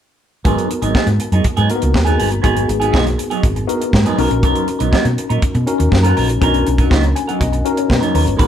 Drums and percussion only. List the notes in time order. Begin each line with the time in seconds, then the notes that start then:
0.45 kick, closed hi-hat
0.58 closed hi-hat
0.71 closed hi-hat
0.82 closed hi-hat
0.95 kick, snare
1.07 closed hi-hat
1.20 closed hi-hat
1.32 closed hi-hat
1.44 kick, closed hi-hat
1.57 closed hi-hat
1.70 closed hi-hat
1.82 closed hi-hat
1.94 kick, snare
2.07 closed hi-hat
2.20 open hi-hat
2.32 closed hi-hat
2.44 kick, closed hi-hat
2.57 closed hi-hat
2.69 closed hi-hat
2.82 closed hi-hat
2.94 kick, snare
3.07 closed hi-hat
3.19 closed hi-hat
3.31 closed hi-hat
3.43 kick, closed hi-hat
3.56 closed hi-hat
3.69 closed hi-hat
3.81 closed hi-hat
3.93 kick, snare
4.06 closed hi-hat
4.18 open hi-hat
4.31 closed hi-hat
4.43 kick, closed hi-hat
4.55 closed hi-hat
4.68 closed hi-hat
4.80 closed hi-hat
4.93 kick, snare
5.05 closed hi-hat
5.18 closed hi-hat
5.30 closed hi-hat
5.42 kick, closed hi-hat
5.55 closed hi-hat
5.67 closed hi-hat
5.80 closed hi-hat
5.92 kick, snare
6.04 closed hi-hat
6.17 open hi-hat
6.29 closed hi-hat
6.42 kick, closed hi-hat
6.54 closed hi-hat
6.67 closed hi-hat
6.78 kick, closed hi-hat
6.91 kick, snare
7.03 closed hi-hat
7.16 closed hi-hat
7.29 closed hi-hat
7.41 kick, closed hi-hat
7.53 closed hi-hat
7.66 closed hi-hat
7.77 closed hi-hat
7.90 kick, snare
8.03 closed hi-hat
8.15 open hi-hat
8.27 closed hi-hat
8.39 kick, closed hi-hat